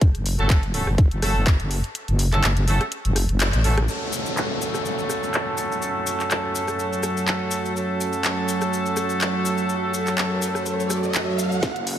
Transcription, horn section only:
0.39 0.60 A3 medium
0.39 0.60 C#4 medium
0.39 0.60 F#4 medium
0.39 0.60 A4 loud
0.74 0.88 A3 medium
0.74 0.88 C#4 medium
0.74 0.88 F#4 medium
0.74 0.88 A4 medium
1.22 1.44 A3 medium
1.22 1.44 C#4 medium
1.22 1.44 F#4 medium
1.22 1.44 A4 loud
2.32 2.45 A3 medium
2.32 2.45 C#4 medium
2.32 2.45 F#4 medium
2.32 2.45 A4 loud
2.68 2.82 A3 medium
2.68 2.82 C#4 medium
2.68 2.82 F#4 medium
2.68 2.82 A4 loud
3.64 3.79 A3 medium
3.64 3.79 C#4 medium
3.64 3.79 F#4 medium
3.64 3.79 A4 medium
3.88 7.73 A3 medium
3.88 7.73 C#4 medium
3.88 7.73 F#4 medium
3.88 7.73 A4 medium
7.76 11.60 A3 medium
7.76 11.60 C#4 medium
7.76 11.60 F#4 medium
7.76 11.60 A4 loud

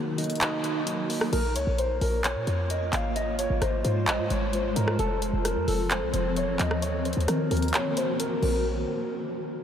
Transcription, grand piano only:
1.33 1.52 A#4 loud
1.55 1.74 C#5 medium
1.78 1.97 C5 medium
2.01 2.20 A#4 medium
2.24 2.43 C#5 medium
2.47 2.66 C#5 medium
2.70 2.89 D#5 medium
2.93 3.12 F5 medium
3.16 3.35 D#5 loud
3.39 3.58 C#5 medium
3.62 3.81 C5 medium
3.84 4.03 C5 medium
4.08 4.27 D#5 medium
4.31 4.50 C#5 medium
4.54 4.73 C5 medium
4.76 4.95 A#4 medium
4.99 5.18 A4 loud
5.22 5.41 C5 medium
5.45 5.64 A#4 medium
5.68 5.87 A4 medium
5.91 6.10 C5 medium
6.13 6.32 C5 medium
6.37 6.56 C#5 medium
6.59 6.78 D#5 medium
6.82 7.01 C#5 loud
7.05 7.24 C5 medium
7.28 7.47 A#4 medium
7.51 7.70 A#4 medium
7.74 7.93 C#5 medium
7.97 8.16 C5 medium
8.20 8.41 A#4 medium
8.43 8.64 A#4 medium

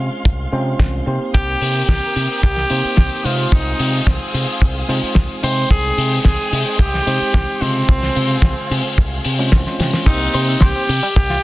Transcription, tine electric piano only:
0.00 0.49 G#3 medium
0.00 0.49 C4 medium
0.00 0.49 C#4 medium
0.00 0.50 F4 medium
0.00 0.50 C5 medium
0.52 1.04 G#3 medium
0.52 1.04 C4 medium
0.52 1.04 C#4 medium
0.52 1.04 F4 medium
0.52 1.04 C5 medium
1.06 2.67 A#3 medium
1.06 2.67 C4 medium
1.06 2.67 D#4 medium
1.06 2.68 G4 medium
1.06 2.68 C5 medium
2.70 3.22 A#3 medium
2.70 3.22 C4 medium
2.70 3.22 D#4 medium
2.70 3.22 G4 medium
2.70 3.22 C5 loud
3.24 4.85 G#3 medium
3.24 4.85 C4 medium
3.24 4.86 D#4 medium
3.24 4.86 F4 medium
3.24 4.86 C5 medium
4.88 5.40 G#3 medium
4.88 5.40 C4 medium
4.88 5.40 D#4 medium
4.88 5.40 F4 medium
4.88 5.40 C5 loud
5.42 7.03 G#3 medium
5.42 7.04 C4 medium
5.42 7.04 D#4 medium
5.42 7.04 C5 medium
5.42 7.04 G5 medium
7.06 7.58 G#3 medium
7.06 7.58 C4 medium
7.06 7.58 D#4 medium
7.06 7.59 G4 medium
7.06 7.59 C5 loud
7.61 9.22 C#3 medium
7.61 9.22 G#3 medium
7.61 9.22 C4 medium
7.61 9.22 F4 medium
7.61 9.23 C5 medium
9.39 9.63 G#3 loud
9.39 9.63 C4 medium
9.39 9.63 C#4 medium
9.39 9.63 F4 medium
9.39 9.63 C5 loud
9.66 10.05 G#3 medium
9.66 10.05 C4 medium
9.66 10.05 C#4 medium
9.66 10.05 F4 medium
9.66 10.06 C5 medium
10.06 10.88 A#3 loud
10.06 10.88 C4 medium
10.06 10.89 D#4 medium
10.06 10.89 G4 medium
10.06 10.89 C5 loud

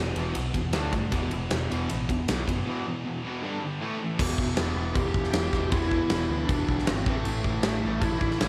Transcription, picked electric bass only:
0.00 0.11 E1 medium
0.17 0.30 E1 medium
0.36 0.49 B1 medium
0.55 0.74 E2 medium
0.74 0.88 D2 medium
0.92 1.06 G2 medium
1.12 1.25 E1 medium
1.33 1.46 E1 loud
1.52 1.65 E1 medium
1.72 1.85 E1 loud
1.91 2.04 A1 medium
2.08 2.22 E1 medium
2.30 2.43 B1 medium
2.48 2.61 F#1 medium
4.20 4.33 E1 medium
4.38 4.52 E1 medium
4.59 4.72 E1 loud
4.76 4.89 E1 loud
4.96 5.09 E1 loud
5.14 5.28 E1 medium
5.35 5.48 E1 medium
5.53 5.66 E1 loud
5.73 5.99 E1 medium
6.12 6.25 E1 loud
6.29 6.42 D2 loud
6.49 6.62 E1 medium
6.69 6.82 B1 medium
6.88 7.01 G1 loud
7.06 7.20 A1 loud
7.26 7.39 A1 loud
7.45 7.58 A1 medium
7.65 7.78 A1 loud
7.84 7.97 A1 loud
8.02 8.15 A1 loud
8.21 8.34 A1 medium
8.41 8.48 A1 medium

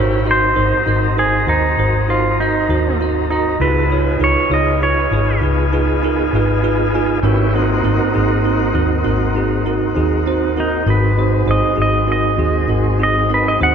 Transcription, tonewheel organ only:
0.00 0.26 C#4 medium
0.00 0.27 E4 medium
0.00 0.27 G4 medium
0.00 0.27 B4 medium
0.26 3.57 F#3 medium
0.26 3.56 C4 medium
0.26 3.57 D#4 medium
0.26 3.56 A#4 medium
3.60 3.90 C4 medium
3.60 3.90 E4 medium
3.60 3.90 F#4 medium
3.60 3.90 A4 medium
3.89 7.20 B3 medium
3.89 7.20 D#4 medium
3.89 7.19 F4 medium
3.89 7.19 G#4 medium
7.23 7.53 B3 medium
7.23 7.53 C#4 medium
7.23 7.54 E4 medium
7.23 7.53 G4 medium
7.54 10.84 A#3 medium
7.54 10.84 C4 medium
7.54 10.84 D#4 medium
7.54 10.84 F#4 medium
10.87 13.75 F#3 medium
10.87 13.75 G#3 medium
10.87 13.75 C4 medium
10.87 13.75 D#4 medium

